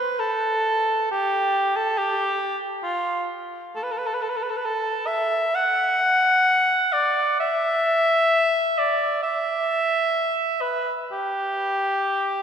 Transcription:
0.00 0.21 B4 loud
0.19 1.10 A4 loud
1.11 1.78 G4 loud
1.76 1.99 A4 loud
1.98 2.59 G4 loud
2.83 3.26 F4 medium
3.76 3.84 A4 medium
3.83 3.93 B4 medium
3.91 3.99 A4 medium
3.98 4.08 B4 medium
4.07 4.15 A4 medium
4.14 4.23 B4 medium
4.22 4.31 A4 medium
4.29 4.38 B4 medium
4.36 4.44 A4 medium
4.43 4.52 B4 medium
4.50 4.58 A4 medium
4.57 4.67 B4 medium
4.65 5.08 A4 loud
5.07 5.56 E5 loud
5.55 6.94 F#5 loud
6.92 7.39 D5 loud
7.40 8.79 E5 loud
8.78 9.22 D5 loud
9.23 10.62 E5 loud
10.61 10.97 B4 medium
11.12 12.43 G4 loud

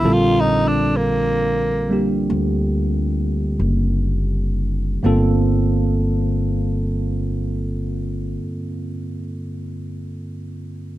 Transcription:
0.00 2.26 A#1 medium
0.00 1.91 A#3 soft
0.00 1.91 D4 soft
0.00 0.14 E4 medium
0.00 1.93 G4 soft
0.00 5.06 A#4 soft
0.04 5.02 D3 medium
0.04 1.88 G3 soft
0.04 5.04 C4 medium
0.04 5.03 F4 soft
0.04 5.04 A4 medium
0.13 0.42 F4 loud
0.40 0.69 D#4 medium
0.67 0.98 D4 medium
0.97 2.12 A#3 medium
1.89 5.03 G3 soft
1.89 5.03 A#3 soft
1.89 5.04 D4 soft
1.89 5.04 G4 soft
2.30 3.55 D2 medium
3.59 4.99 F#1 medium
5.03 8.35 G1 medium
5.03 8.38 G2 medium
5.03 8.38 D3 medium
5.03 8.39 A#3 medium
5.03 8.39 C4 medium
5.03 8.40 F4 medium
5.03 8.41 A4 medium

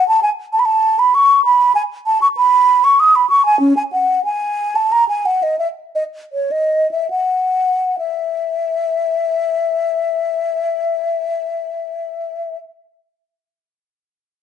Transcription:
0.08 0.22 A5 medium
0.23 0.30 G#5 medium
0.53 0.61 A5 medium
0.59 0.67 B5 medium
0.65 1.01 A5 medium
0.99 1.16 B5 medium
1.15 1.44 C#6 medium
1.45 1.74 B5 medium
1.75 1.82 G#5 medium
2.06 2.21 A5 medium
2.22 2.28 C#6 medium
2.37 2.86 B5 medium
2.84 3.01 C#6 medium
3.00 3.17 D#6 medium
3.16 3.29 B5 medium
3.30 3.45 C#6 medium
3.45 3.59 G#5 medium
3.60 3.76 C#4 medium
3.77 3.83 G#5 medium
3.92 4.24 F#5 medium
4.25 4.77 G#5 medium
4.75 4.94 A5 medium
4.92 5.08 A#5 medium
5.09 5.27 G#5 medium
5.26 5.44 F#5 medium
5.43 5.58 D#5 medium
5.59 5.67 E5 medium
5.95 6.04 D#5 medium
6.33 6.53 C#5 medium
6.51 6.91 D#5 medium
6.91 7.10 E5 soft
7.10 7.96 F#5 medium
7.99 12.56 E5 medium

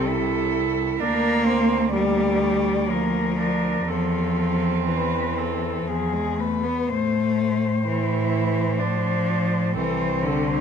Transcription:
0.00 1.01 C2 soft
0.00 0.52 C3 medium
0.00 0.95 A4 soft
0.07 1.01 E4 medium
0.99 3.88 D2 medium
0.99 1.90 A#3 medium
0.99 1.47 D4 medium
0.99 1.47 A#4 medium
1.45 1.93 C4 medium
1.45 1.92 C5 soft
1.92 2.91 G3 medium
1.92 2.42 A#3 medium
1.92 2.92 D5 soft
2.40 2.90 A3 soft
2.89 3.88 F3 medium
2.89 3.38 A#3 soft
2.89 3.37 A#4 soft
3.38 3.90 D4 soft
3.38 3.89 A#4 soft
3.87 5.83 E2 soft
3.87 4.89 F3 medium
3.87 6.38 C4 soft
3.87 4.78 A4 soft
4.87 5.89 E3 soft
4.87 5.40 B4 medium
5.38 5.90 A4 soft
5.87 6.66 E2 soft
5.87 6.14 F3 soft
5.87 6.41 G#4 soft
6.13 6.40 G#3 soft
6.38 6.65 A3 medium
6.38 6.89 B4 soft
6.63 6.90 B3 medium
6.89 9.78 A2 soft
6.89 7.86 A3 medium
6.89 7.15 C5 soft
7.15 7.40 C5 soft
7.40 7.64 C5 soft
7.64 7.87 C5 soft
7.86 8.83 E3 medium
7.86 8.81 E4 medium
7.86 8.11 C5 soft
8.11 8.35 C5 soft
8.35 8.57 C5 soft
8.57 8.81 C5 soft
8.80 9.76 F3 medium
8.80 9.74 D4 soft
8.80 9.04 C5 soft
9.04 9.28 C5 soft
9.28 9.52 C5 soft
9.52 9.76 C5 soft
9.75 10.61 C2 soft
9.75 10.24 E3 medium
9.75 10.61 C4 medium
9.75 10.01 A4 soft
10.00 10.25 C5 soft
10.23 10.61 D3 medium
10.23 10.49 A4 soft
10.47 10.61 C5 soft

